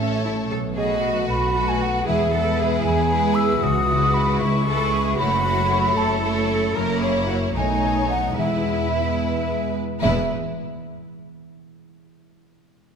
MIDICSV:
0, 0, Header, 1, 8, 480
1, 0, Start_track
1, 0, Key_signature, 4, "major"
1, 0, Tempo, 521286
1, 466, Time_signature, 6, 3, 24, 8
1, 6705, Tempo, 548948
1, 9105, Tempo, 538600
1, 11716, End_track
2, 0, Start_track
2, 0, Title_t, "Flute"
2, 0, Program_c, 0, 73
2, 0, Note_on_c, 0, 76, 71
2, 201, Note_off_c, 0, 76, 0
2, 710, Note_on_c, 0, 75, 64
2, 1157, Note_off_c, 0, 75, 0
2, 1192, Note_on_c, 0, 83, 74
2, 1550, Note_on_c, 0, 80, 66
2, 1564, Note_off_c, 0, 83, 0
2, 1677, Note_on_c, 0, 78, 60
2, 1691, Note_off_c, 0, 80, 0
2, 1904, Note_off_c, 0, 78, 0
2, 1909, Note_on_c, 0, 76, 76
2, 2606, Note_off_c, 0, 76, 0
2, 2613, Note_on_c, 0, 80, 75
2, 3083, Note_on_c, 0, 88, 78
2, 3097, Note_off_c, 0, 80, 0
2, 3339, Note_on_c, 0, 87, 86
2, 3353, Note_off_c, 0, 88, 0
2, 3810, Note_on_c, 0, 83, 78
2, 3824, Note_off_c, 0, 87, 0
2, 4042, Note_off_c, 0, 83, 0
2, 4048, Note_on_c, 0, 85, 83
2, 4757, Note_off_c, 0, 85, 0
2, 4772, Note_on_c, 0, 83, 92
2, 5499, Note_on_c, 0, 81, 77
2, 5513, Note_off_c, 0, 83, 0
2, 5738, Note_off_c, 0, 81, 0
2, 6467, Note_on_c, 0, 73, 67
2, 6910, Note_off_c, 0, 73, 0
2, 6949, Note_on_c, 0, 80, 73
2, 7409, Note_off_c, 0, 80, 0
2, 7418, Note_on_c, 0, 78, 64
2, 7652, Note_off_c, 0, 78, 0
2, 7668, Note_on_c, 0, 76, 63
2, 8847, Note_off_c, 0, 76, 0
2, 9098, Note_on_c, 0, 76, 63
2, 9368, Note_off_c, 0, 76, 0
2, 11716, End_track
3, 0, Start_track
3, 0, Title_t, "Violin section"
3, 0, Program_c, 1, 48
3, 0, Note_on_c, 1, 73, 47
3, 459, Note_off_c, 1, 73, 0
3, 711, Note_on_c, 1, 71, 50
3, 1416, Note_off_c, 1, 71, 0
3, 1429, Note_on_c, 1, 71, 47
3, 1890, Note_off_c, 1, 71, 0
3, 1901, Note_on_c, 1, 71, 45
3, 2131, Note_off_c, 1, 71, 0
3, 2142, Note_on_c, 1, 71, 53
3, 2843, Note_off_c, 1, 71, 0
3, 2861, Note_on_c, 1, 71, 49
3, 3329, Note_off_c, 1, 71, 0
3, 3581, Note_on_c, 1, 71, 54
3, 4288, Note_off_c, 1, 71, 0
3, 4306, Note_on_c, 1, 71, 49
3, 4771, Note_off_c, 1, 71, 0
3, 4779, Note_on_c, 1, 73, 51
3, 5001, Note_off_c, 1, 73, 0
3, 5012, Note_on_c, 1, 73, 57
3, 5719, Note_off_c, 1, 73, 0
3, 5747, Note_on_c, 1, 73, 53
3, 6215, Note_off_c, 1, 73, 0
3, 6226, Note_on_c, 1, 73, 58
3, 6908, Note_off_c, 1, 73, 0
3, 6948, Note_on_c, 1, 73, 52
3, 7644, Note_off_c, 1, 73, 0
3, 7653, Note_on_c, 1, 71, 49
3, 8896, Note_off_c, 1, 71, 0
3, 9106, Note_on_c, 1, 71, 49
3, 9373, Note_off_c, 1, 71, 0
3, 11716, End_track
4, 0, Start_track
4, 0, Title_t, "Cello section"
4, 0, Program_c, 2, 48
4, 0, Note_on_c, 2, 61, 50
4, 222, Note_off_c, 2, 61, 0
4, 226, Note_on_c, 2, 64, 54
4, 300, Note_off_c, 2, 64, 0
4, 467, Note_on_c, 2, 69, 60
4, 541, Note_off_c, 2, 69, 0
4, 704, Note_on_c, 2, 68, 55
4, 942, Note_off_c, 2, 68, 0
4, 950, Note_on_c, 2, 66, 61
4, 1904, Note_on_c, 2, 68, 59
4, 1908, Note_off_c, 2, 66, 0
4, 2138, Note_off_c, 2, 68, 0
4, 2143, Note_on_c, 2, 69, 61
4, 2380, Note_off_c, 2, 69, 0
4, 2381, Note_on_c, 2, 68, 64
4, 3338, Note_off_c, 2, 68, 0
4, 3338, Note_on_c, 2, 66, 62
4, 4046, Note_off_c, 2, 66, 0
4, 4062, Note_on_c, 2, 64, 58
4, 4301, Note_off_c, 2, 64, 0
4, 4301, Note_on_c, 2, 69, 64
4, 4535, Note_off_c, 2, 69, 0
4, 4542, Note_on_c, 2, 68, 59
4, 4774, Note_on_c, 2, 66, 73
4, 4779, Note_off_c, 2, 68, 0
4, 5494, Note_off_c, 2, 66, 0
4, 5495, Note_on_c, 2, 69, 61
4, 6203, Note_off_c, 2, 69, 0
4, 6215, Note_on_c, 2, 70, 65
4, 6459, Note_off_c, 2, 70, 0
4, 6466, Note_on_c, 2, 68, 55
4, 6539, Note_off_c, 2, 68, 0
4, 6705, Note_on_c, 2, 66, 52
4, 6775, Note_off_c, 2, 66, 0
4, 6944, Note_on_c, 2, 63, 50
4, 7642, Note_off_c, 2, 63, 0
4, 7656, Note_on_c, 2, 64, 46
4, 8721, Note_off_c, 2, 64, 0
4, 9110, Note_on_c, 2, 40, 59
4, 9375, Note_off_c, 2, 40, 0
4, 11716, End_track
5, 0, Start_track
5, 0, Title_t, "Violin section"
5, 0, Program_c, 3, 48
5, 0, Note_on_c, 3, 69, 44
5, 453, Note_off_c, 3, 69, 0
5, 711, Note_on_c, 3, 66, 47
5, 1416, Note_off_c, 3, 66, 0
5, 1431, Note_on_c, 3, 66, 44
5, 1898, Note_off_c, 3, 66, 0
5, 1902, Note_on_c, 3, 64, 46
5, 2137, Note_off_c, 3, 64, 0
5, 2148, Note_on_c, 3, 64, 49
5, 2846, Note_off_c, 3, 64, 0
5, 2865, Note_on_c, 3, 64, 48
5, 3331, Note_off_c, 3, 64, 0
5, 3573, Note_on_c, 3, 64, 52
5, 4284, Note_off_c, 3, 64, 0
5, 4298, Note_on_c, 3, 64, 53
5, 4764, Note_off_c, 3, 64, 0
5, 4775, Note_on_c, 3, 64, 56
5, 5004, Note_off_c, 3, 64, 0
5, 5015, Note_on_c, 3, 64, 53
5, 5721, Note_off_c, 3, 64, 0
5, 5735, Note_on_c, 3, 64, 51
5, 6203, Note_off_c, 3, 64, 0
5, 6214, Note_on_c, 3, 64, 60
5, 6903, Note_off_c, 3, 64, 0
5, 6941, Note_on_c, 3, 63, 51
5, 7653, Note_on_c, 3, 64, 49
5, 7655, Note_off_c, 3, 63, 0
5, 8922, Note_off_c, 3, 64, 0
5, 9097, Note_on_c, 3, 64, 53
5, 9368, Note_off_c, 3, 64, 0
5, 11716, End_track
6, 0, Start_track
6, 0, Title_t, "Harp"
6, 0, Program_c, 4, 46
6, 0, Note_on_c, 4, 45, 54
6, 0, Note_on_c, 4, 57, 42
6, 0, Note_on_c, 4, 61, 44
6, 0, Note_on_c, 4, 64, 43
6, 0, Note_on_c, 4, 69, 45
6, 0, Note_on_c, 4, 76, 42
6, 216, Note_off_c, 4, 57, 0
6, 227, Note_on_c, 4, 57, 44
6, 472, Note_on_c, 4, 47, 49
6, 485, Note_off_c, 4, 61, 0
6, 489, Note_off_c, 4, 45, 0
6, 489, Note_off_c, 4, 76, 0
6, 491, Note_off_c, 4, 64, 0
6, 700, Note_off_c, 4, 57, 0
6, 711, Note_on_c, 4, 57, 40
6, 952, Note_on_c, 4, 59, 39
6, 1196, Note_on_c, 4, 66, 44
6, 1421, Note_off_c, 4, 69, 0
6, 1432, Note_on_c, 4, 69, 45
6, 1658, Note_off_c, 4, 59, 0
6, 1670, Note_on_c, 4, 59, 44
6, 1909, Note_on_c, 4, 52, 55
6, 1927, Note_off_c, 4, 69, 0
6, 1928, Note_off_c, 4, 57, 0
6, 1929, Note_off_c, 4, 47, 0
6, 1929, Note_off_c, 4, 66, 0
6, 2137, Note_off_c, 4, 59, 0
6, 2148, Note_on_c, 4, 59, 40
6, 2387, Note_on_c, 4, 64, 43
6, 2628, Note_on_c, 4, 68, 47
6, 2859, Note_on_c, 4, 71, 49
6, 3089, Note_off_c, 4, 64, 0
6, 3100, Note_on_c, 4, 64, 48
6, 3342, Note_on_c, 4, 49, 58
6, 3358, Note_off_c, 4, 52, 0
6, 3566, Note_off_c, 4, 59, 0
6, 3577, Note_on_c, 4, 59, 48
6, 3814, Note_off_c, 4, 64, 0
6, 3825, Note_on_c, 4, 64, 48
6, 4058, Note_off_c, 4, 68, 0
6, 4069, Note_on_c, 4, 68, 50
6, 4297, Note_off_c, 4, 71, 0
6, 4308, Note_on_c, 4, 71, 51
6, 4529, Note_off_c, 4, 64, 0
6, 4540, Note_on_c, 4, 64, 51
6, 4783, Note_on_c, 4, 42, 63
6, 4797, Note_off_c, 4, 59, 0
6, 4799, Note_off_c, 4, 49, 0
6, 4801, Note_off_c, 4, 68, 0
6, 4801, Note_off_c, 4, 71, 0
6, 5019, Note_on_c, 4, 57, 49
6, 5260, Note_on_c, 4, 61, 46
6, 5484, Note_off_c, 4, 64, 0
6, 5495, Note_on_c, 4, 64, 52
6, 5742, Note_on_c, 4, 69, 47
6, 5970, Note_off_c, 4, 61, 0
6, 5981, Note_on_c, 4, 61, 50
6, 6216, Note_off_c, 4, 42, 0
6, 6227, Note_on_c, 4, 42, 58
6, 6239, Note_off_c, 4, 57, 0
6, 6241, Note_off_c, 4, 69, 0
6, 6471, Note_on_c, 4, 58, 42
6, 6709, Note_off_c, 4, 61, 0
6, 6712, Note_off_c, 4, 64, 0
6, 6717, Note_on_c, 4, 61, 35
6, 6725, Note_on_c, 4, 64, 40
6, 6950, Note_on_c, 4, 47, 50
6, 6962, Note_off_c, 4, 42, 0
6, 6963, Note_off_c, 4, 58, 0
6, 6967, Note_off_c, 4, 64, 0
6, 7190, Note_on_c, 4, 57, 39
6, 7415, Note_off_c, 4, 61, 0
6, 7426, Note_on_c, 4, 61, 34
6, 7430, Note_on_c, 4, 63, 38
6, 7664, Note_on_c, 4, 52, 42
6, 7679, Note_off_c, 4, 47, 0
6, 7680, Note_off_c, 4, 61, 0
6, 7681, Note_off_c, 4, 57, 0
6, 7682, Note_off_c, 4, 63, 0
6, 7902, Note_on_c, 4, 59, 34
6, 8148, Note_on_c, 4, 64, 33
6, 8386, Note_on_c, 4, 68, 36
6, 8629, Note_on_c, 4, 71, 33
6, 8860, Note_off_c, 4, 64, 0
6, 8871, Note_on_c, 4, 64, 32
6, 9083, Note_off_c, 4, 52, 0
6, 9087, Note_on_c, 4, 52, 44
6, 9100, Note_on_c, 4, 56, 43
6, 9103, Note_off_c, 4, 59, 0
6, 9104, Note_off_c, 4, 64, 0
6, 9106, Note_off_c, 4, 71, 0
6, 9114, Note_on_c, 4, 59, 46
6, 9129, Note_on_c, 4, 64, 43
6, 9146, Note_on_c, 4, 71, 45
6, 9377, Note_off_c, 4, 56, 0
6, 9377, Note_off_c, 4, 59, 0
6, 9377, Note_off_c, 4, 64, 0
6, 9378, Note_off_c, 4, 52, 0
6, 9378, Note_off_c, 4, 71, 0
6, 10569, Note_off_c, 4, 68, 0
6, 11716, End_track
7, 0, Start_track
7, 0, Title_t, "Viola section"
7, 0, Program_c, 5, 48
7, 0, Note_on_c, 5, 57, 47
7, 458, Note_off_c, 5, 57, 0
7, 704, Note_on_c, 5, 57, 48
7, 1413, Note_off_c, 5, 57, 0
7, 1431, Note_on_c, 5, 57, 45
7, 1898, Note_off_c, 5, 57, 0
7, 1904, Note_on_c, 5, 56, 46
7, 2128, Note_off_c, 5, 56, 0
7, 2139, Note_on_c, 5, 56, 50
7, 2842, Note_off_c, 5, 56, 0
7, 2862, Note_on_c, 5, 56, 52
7, 3329, Note_off_c, 5, 56, 0
7, 3574, Note_on_c, 5, 56, 51
7, 4284, Note_off_c, 5, 56, 0
7, 4294, Note_on_c, 5, 56, 55
7, 4765, Note_off_c, 5, 56, 0
7, 4771, Note_on_c, 5, 57, 49
7, 4997, Note_off_c, 5, 57, 0
7, 5009, Note_on_c, 5, 57, 53
7, 5717, Note_off_c, 5, 57, 0
7, 5732, Note_on_c, 5, 57, 54
7, 6207, Note_off_c, 5, 57, 0
7, 6219, Note_on_c, 5, 58, 54
7, 6905, Note_off_c, 5, 58, 0
7, 6939, Note_on_c, 5, 57, 56
7, 7654, Note_off_c, 5, 57, 0
7, 7654, Note_on_c, 5, 56, 48
7, 8897, Note_off_c, 5, 56, 0
7, 9109, Note_on_c, 5, 56, 49
7, 9374, Note_off_c, 5, 56, 0
7, 11716, End_track
8, 0, Start_track
8, 0, Title_t, "Double bass section"
8, 0, Program_c, 6, 48
8, 0, Note_on_c, 6, 33, 55
8, 384, Note_off_c, 6, 33, 0
8, 473, Note_on_c, 6, 35, 61
8, 1107, Note_off_c, 6, 35, 0
8, 1193, Note_on_c, 6, 35, 55
8, 1824, Note_off_c, 6, 35, 0
8, 1912, Note_on_c, 6, 40, 61
8, 2537, Note_off_c, 6, 40, 0
8, 2627, Note_on_c, 6, 40, 56
8, 3256, Note_off_c, 6, 40, 0
8, 3340, Note_on_c, 6, 37, 66
8, 3976, Note_off_c, 6, 37, 0
8, 4069, Note_on_c, 6, 37, 63
8, 4698, Note_off_c, 6, 37, 0
8, 4783, Note_on_c, 6, 30, 64
8, 5414, Note_off_c, 6, 30, 0
8, 5499, Note_on_c, 6, 30, 57
8, 6134, Note_off_c, 6, 30, 0
8, 6226, Note_on_c, 6, 30, 57
8, 6908, Note_off_c, 6, 30, 0
8, 6945, Note_on_c, 6, 35, 49
8, 7657, Note_off_c, 6, 35, 0
8, 7662, Note_on_c, 6, 40, 49
8, 8927, Note_off_c, 6, 40, 0
8, 9104, Note_on_c, 6, 28, 51
8, 9372, Note_off_c, 6, 28, 0
8, 11716, End_track
0, 0, End_of_file